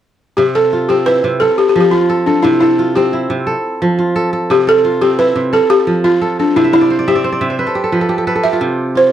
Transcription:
0.37 C3 G4
0.55 A4
0.73 F4
0.89 C4 G4
1.06 E4 B4
1.24 C3
1.40 A4
1.58 G4
1.69 G4
1.76 F3
1.81 G4
1.85 G4
1.91 F4
2.09 A4
2.26 D4 A4
2.43 C3 E4
2.61 E4 A4
2.79 F4
2.95 C4 G4
3.13 E4
3.30 C3
3.47 A4
3.82 F3
3.99 F4
4.16 A4
4.33 A4
4.50 C3 G4
4.67 A4
4.85 F4
5.01 C4 G4
5.19 E4 B4
5.36 C3
5.53 A4
5.70 G4
5.87 F3
6.04 F4
6.21 A4
6.39 D4 A4
6.56 C3 E4
6.64 E5
6.73 E4 F5
6.81 D5
6.90 C5
6.99 D5
7.08 C4 G4 E5
7.15 D5
7.24 C5
7.32 D5
7.41 C3 E5
7.50 C5
7.59 B4
7.67 A4
7.75 G4
7.84 A4
7.92 F3 B4
8.01 A4
8.09 G4
8.18 A4
8.27 A4 B4
8.36 A4
8.44 G4 E5
8.53 F4
8.61 C3
8.95 F4 C5

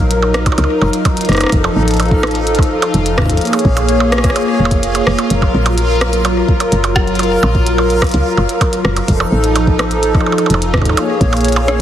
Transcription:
Already playing: A#1 F#3 D#4 F4 A#4 F5
0.11 closed hi-hat
0.22 percussion blips
0.34 cross-stick, closed hi-hat
0.46 kick, closed hi-hat, percussion blips
0.52 percussion blips
0.58 C#2, closed hi-hat, percussion blips
0.64 percussion blips
0.81 F#1, percussion blips
0.93 closed hi-hat
1.05 kick, closed hi-hat, percussion blips
1.17 closed hi-hat
1.21 closed hi-hat
1.25 F#1, cross-stick, closed hi-hat
1.29 cross-stick, closed hi-hat
1.33 cross-stick, closed hi-hat
1.37 cross-stick, closed hi-hat
1.41 cross-stick, closed hi-hat, percussion blips
1.44 cross-stick
1.46 cross-stick
1.49 F1 F3 A4, kick, cross-stick, closed hi-hat
1.64 percussion blips
1.76 A1
1.88 closed hi-hat
1.91 closed hi-hat
1.94 closed hi-hat
1.97 closed hi-hat
2.00 closed hi-hat, percussion blips
2.06 closed hi-hat
2.11 kick
2.23 cross-stick, closed hi-hat, percussion blips
2.27 closed hi-hat
2.31 closed hi-hat
2.35 closed hi-hat
2.47 closed hi-hat
2.55 kick, closed hi-hat, percussion blips
2.63 closed hi-hat
2.82 closed hi-hat, percussion blips
2.94 F1, closed hi-hat
3.06 closed hi-hat
3.18 kick, cross-stick, percussion blips
3.22 kick
3.26 kick
3.29 kick, closed hi-hat
3.33 kick
3.37 kick, closed hi-hat
3.41 A#3 G#4 C#5, closed hi-hat
3.45 closed hi-hat
3.47 closed hi-hat
3.53 closed hi-hat, percussion blips
3.59 closed hi-hat
3.65 A#1, kick
3.77 closed hi-hat, percussion blips
3.89 closed hi-hat
4.00 percussion blips
4.12 cross-stick, closed hi-hat
4.18 cross-stick
4.24 kick, cross-stick, closed hi-hat
4.30 cross-stick
4.36 closed hi-hat, percussion blips
4.59 F1
4.65 percussion blips
4.71 kick, closed hi-hat
4.83 closed hi-hat
4.95 closed hi-hat, percussion blips
5.07 F1, cross-stick
5.19 closed hi-hat, percussion blips
5.30 F#1 F#3 F4 A#4, closed hi-hat
5.42 kick, percussion blips
5.54 A#1
5.66 closed hi-hat, percussion blips
5.78 closed hi-hat
6.01 cross-stick, closed hi-hat, percussion blips
6.13 closed hi-hat
6.25 closed hi-hat, percussion blips
6.48 kick
6.60 closed hi-hat, percussion blips
6.72 F#1, closed hi-hat
6.84 closed hi-hat, percussion blips
6.96 kick, cross-stick
7.07 closed hi-hat
7.15 closed hi-hat
7.19 closed hi-hat, percussion blips
7.23 closed hi-hat
7.43 A#1, percussion blips
7.55 kick
7.67 closed hi-hat
7.78 percussion blips
7.90 closed hi-hat
8.02 kick, cross-stick, closed hi-hat, percussion blips
8.04 closed hi-hat
8.07 closed hi-hat
8.09 closed hi-hat
8.11 C#2, closed hi-hat
8.14 closed hi-hat
8.37 F#1, percussion blips
8.49 closed hi-hat
8.61 kick, closed hi-hat, percussion blips
8.73 closed hi-hat
8.85 F#1, cross-stick
8.97 closed hi-hat, percussion blips
9.08 F1 F3 D#4 A4, kick, closed hi-hat
9.20 percussion blips
9.32 A1
9.44 closed hi-hat
9.56 closed hi-hat, percussion blips
9.67 kick
9.79 cross-stick, closed hi-hat, percussion blips
9.91 closed hi-hat
10.03 closed hi-hat
10.15 kick, percussion blips
10.21 percussion blips
10.26 percussion blips
10.32 percussion blips
10.38 closed hi-hat, percussion blips
10.46 F1, closed hi-hat, percussion blips
10.54 percussion blips
10.62 closed hi-hat
10.74 kick, cross-stick, percussion blips
10.78 kick
10.81 kick, percussion blips
10.85 kick, closed hi-hat
10.89 kick, percussion blips
10.93 C#5, kick
10.97 A#3 G#4, closed hi-hat, percussion blips
11.21 A#1, kick, closed hi-hat
11.33 closed hi-hat, percussion blips
11.37 closed hi-hat
11.41 closed hi-hat
11.45 closed hi-hat
11.48 closed hi-hat
11.52 closed hi-hat, percussion blips
11.68 cross-stick, closed hi-hat

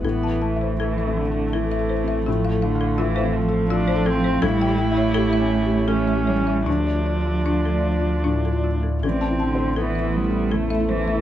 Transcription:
0.03 A1 A2 E3 A3 B3 E4 A4
0.23 A5
0.31 A4
0.42 A3 A5
0.56 E5
0.61 C5
0.79 E3 A4
0.98 E5
1.07 C4
1.18 D3
1.31 A4
1.53 E3 A4
1.72 E5
1.79 A4
1.89 C5
2.04 C4 E5
2.26 A2 F3 F4 F5
2.45 F5
2.52 A4
2.62 D3 F5
2.75 F5
2.81 A4
2.98 E3 F4 A4
3.16 C5
3.23 C4
3.36 F3
3.48 A4
3.70 A3 D4 F4
3.88 C5
3.95 A4
4.06 C4 A4
4.20 C4
4.24 C5
4.42 A1 A2 G3 A3 E4 G4 A4 C#5
4.62 G5
4.67 G4
4.78 A3 G5
4.92 E5
4.97 C#5
5.14 G4 A4
5.33 E5
5.40 C#4
5.65 G4
5.88 E3 A3 C#4 A4
6.08 E5
6.16 G4
6.27 G3 C#5
6.41 C#4
6.47 E5
6.66 D2 F3 D4 F4 D5
6.87 D5
6.95 F4
7.06 D5
7.21 D5
7.26 F4
7.46 D4 F4
7.65 A4
7.73 A3
8.00 F4
8.24 A2 D4
8.45 A4
8.52 F4
8.64 F4
8.80 A3 A4
9.03 A1 E3 A3 C4 E4 A4
9.21 A5
9.30 E4
9.40 D3 A5
9.55 C5
9.76 E3 B3 A4
9.81 E4
9.95 E5
10.04 A3
10.17 G3
10.30 E4
10.52 E2 A3 A4
10.70 E5
10.80 E4
10.89 E3 C5
11.04 A3 E5

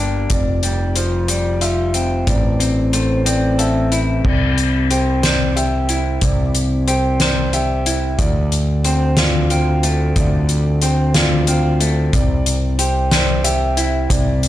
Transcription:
Already playing: G1 G3 A#3 D4 G4 F5
0.30 F1 F2 D5, kick, closed hi-hat
0.63 G3, closed hi-hat
0.96 F3 C5, closed hi-hat
1.28 G3 D5, closed hi-hat
1.61 F4 E5, closed hi-hat
1.94 C4, closed hi-hat
2.27 A1 A2 D5, kick, closed hi-hat
2.60 C4, closed hi-hat
2.93 A3 C5, closed hi-hat
3.26 C4 D5, closed hi-hat
3.59 A4 E5, closed hi-hat
3.92 E4, closed hi-hat
4.24 C2 C3 D5, kick, crash
4.58 closed hi-hat
4.91 G4 C5, closed hi-hat
5.23 C5 D5, snare, closed hi-hat
5.56 G4 E5, closed hi-hat
5.89 E4, closed hi-hat
6.21 C2 C3 D5, kick, closed hi-hat
6.55 closed hi-hat
6.88 G4 C5, closed hi-hat
7.20 C5 D5, snare, closed hi-hat
7.53 G4 E5, closed hi-hat
7.86 E4, closed hi-hat
8.19 D2 D5, kick, closed hi-hat
8.52 closed hi-hat
8.85 C4 C5, closed hi-hat
9.17 F4 D5, snare, closed hi-hat
9.50 C4 F5, closed hi-hat
9.83 A3, closed hi-hat
10.16 D2 D5, kick, closed hi-hat
10.49 closed hi-hat
10.82 C4 C5, closed hi-hat
11.14 F4 D5, snare, closed hi-hat
11.47 C4 F5, closed hi-hat
11.81 A3, closed hi-hat
12.13 C2 C3 D5, kick, closed hi-hat
12.46 closed hi-hat
12.79 G4 C5, closed hi-hat
13.11 C5 D5, snare, closed hi-hat
13.44 G4 E5, closed hi-hat
13.77 E4, closed hi-hat
14.10 C2 C3 D5, kick, closed hi-hat
14.43 closed hi-hat

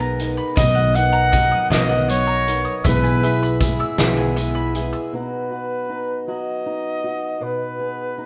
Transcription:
Already playing: B1 G#3 B3 D#4 A#4 B4 G#5
0.00 A#5
0.19 G#3 B3 D#4 A#4, closed hi-hat
0.37 B5
0.56 B1 B2 D#3 F#3 B3 D#4 A#4 D#5, kick, closed hi-hat, tambourine
0.75 F#5
0.94 F#3 B3 D#4 A#4 D#5 F#5, closed hi-hat
1.13 A#5
1.32 F#3 B3 D#4 A#4 D#5, kick, closed hi-hat, tambourine
1.52 D#6
1.70 B1 B2 D#3 F#3 B3 D#4 A#4 D#5, snare, closed hi-hat
1.89 F#5
2.08 F#3 B3 D#4 A#4 C#5 D#5, closed hi-hat, tambourine
2.27 A#5
2.48 F#3 B3 D#4 A#4, closed hi-hat
2.65 D#6
2.77 C#5
2.84 B1 B2 E3 G#3 B3 E4 G#4 B4 E5, kick, closed hi-hat, tambourine
3.04 G#5, tambourine
3.23 G#3 B3 E4 G#4 E5, closed hi-hat, tambourine
3.43 B5, tambourine
3.60 G#3 B3 E4 G#4 E5, kick, closed hi-hat, tambourine
3.80 E6
3.98 B1 B2 E3 G#3 B3 E4 G#4 E5, snare, closed hi-hat
4.17 G#5
4.36 G#3 B3 E4 G#4 E5, closed hi-hat, tambourine
4.55 B5
4.75 G#3 B3 E4 G#4, closed hi-hat
4.93 E6
5.12 B2 F#3 B3 D#4 F#4 B4
5.51 F#4
5.89 D#4
6.28 F#3 F#4 D#5
6.66 D#4
7.04 F#4
7.41 B2 B3 B4
7.79 G#4
8.18 D#4

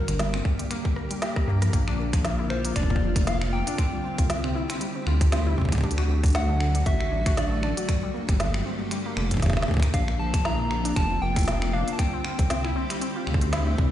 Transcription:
Already playing: D3 A#3 G4 A#4
0.08 G1 D3, finger snap, closed hi-hat
0.19 G3, snare, closed hi-hat
0.34 C4, finger snap
0.45 G2, kick
0.59 G3, closed hi-hat
0.71 A#3, finger snap, closed hi-hat
0.85 G3, kick
0.96 A#3, cross-stick
1.11 G3, closed hi-hat
1.22 G4, cross-stick, snare, closed hi-hat
1.36 G2, kick, cross-stick
1.48 G2 A#3
1.62 F3, cross-stick, closed hi-hat
1.73 A#1 D3 A#3 C4 F4, kick, closed hi-hat
1.88 D4, finger snap
1.99 A#3
2.13 F3, finger snap, kick, closed hi-hat
2.25 A#3, snare, closed hi-hat
2.39 E4
2.50 A#2 C5, finger snap
2.65 A#3, closed hi-hat
2.76 F1 D4 D5, finger snap, kick, closed hi-hat
2.83 kick
2.90 A#3, kick
2.96 kick
3.01 F1 F3
3.16 A#3, finger snap, kick, closed hi-hat
3.27 E4 F5, snare, closed hi-hat
3.42 A#2, finger snap
3.53 A#3 G5
3.67 D4, closed hi-hat
3.78 G3 C4 G4, finger snap, kick, closed hi-hat
3.93 G3
4.04 C4
4.18 C2 F4, kick, closed hi-hat
4.30 C3, snare, closed hi-hat
4.44 C4, finger snap
4.55 E4
4.70 C4, finger snap, closed hi-hat
4.81 G3, closed hi-hat
4.95 C4
5.07 D2 F4, finger snap
5.21 C3, kick, closed hi-hat
5.32 C4, finger snap, snare, closed hi-hat
5.47 E4
5.58 C2 C4, kick
5.62 kick
5.65 kick
5.69 G3, kick
5.72 finger snap, kick, closed hi-hat
5.75 kick
5.78 kick
5.81 D2 F#3 A3 D4 F#4, kick
5.84 kick
5.91 closed hi-hat
5.98 F#4, finger snap
6.09 D3
6.24 D4, kick, closed hi-hat
6.26 closed hi-hat
6.28 closed hi-hat
6.30 closed hi-hat
6.33 F#4 F#5, finger snap, snare, closed hi-hat
6.35 closed hi-hat
6.49 D4
6.60 A3, finger snap
6.75 D4, closed hi-hat
6.86 A1 F#4 E5, kick, closed hi-hat
7.00 D3, finger snap
7.12 A1 D4
7.26 F#4, finger snap, kick, closed hi-hat
7.37 D4 D5, snare, closed hi-hat
7.52 A3
7.63 D4 D5, finger snap
7.77 F#4, closed hi-hat
7.89 G2 A#3 G4, finger snap, kick, closed hi-hat
8.03 G3
8.14 A#3
8.29 G1 G3, finger snap, kick, closed hi-hat
8.40 D3, snare, closed hi-hat
8.54 G3, finger snap
8.66 C4
8.80 G2
8.91 G3, finger snap, closed hi-hat
9.06 A#3
9.17 F1 D3, finger snap
9.31 D3, kick, closed hi-hat
9.34 kick
9.37 kick
9.40 kick, snare, closed hi-hat
9.42 D3, kick
9.46 kick, snare
9.50 kick
9.53 A#3, finger snap, kick, snare
9.62 snare
9.68 D2 G4, kick
9.71 kick
9.74 kick
9.77 kick
9.80 A#3, finger snap, kick, closed hi-hat
9.94 A#1 C4 D4 F4 F5, kick, closed hi-hat
10.08 A#3, finger snap
10.19 F3 A5
10.34 A#3, finger snap, kick, closed hi-hat
10.45 E4 A#5, snare
10.59 A#2
10.71 A#3 A#5, finger snap
10.85 D4, closed hi-hat
10.96 F1 A#3 A5, finger snap, kick, closed hi-hat
11.11 F3
11.22 F1 A#3 G5
11.36 E4, finger snap, kick, closed hi-hat
11.39 closed hi-hat
11.41 closed hi-hat
11.43 closed hi-hat
11.45 A#2, snare, closed hi-hat
11.48 closed hi-hat
11.62 A#3, finger snap
11.73 D4 F5
11.88 A#3, closed hi-hat
11.93 A5
11.99 D3 G3 G4 G5, finger snap, kick, closed hi-hat
12.13 C4
12.25 F4, finger snap
12.39 C2 C3, kick, closed hi-hat
12.50 C4, snare, closed hi-hat
12.65 E4, finger snap
12.76 C4
12.90 G3, finger snap, closed hi-hat
13.01 C4, closed hi-hat
13.16 F4
13.27 D2 C3, finger snap
13.34 kick
13.41 C4, closed hi-hat
13.53 E4, finger snap, snare, closed hi-hat
13.67 C4
13.78 C2 G3, kick

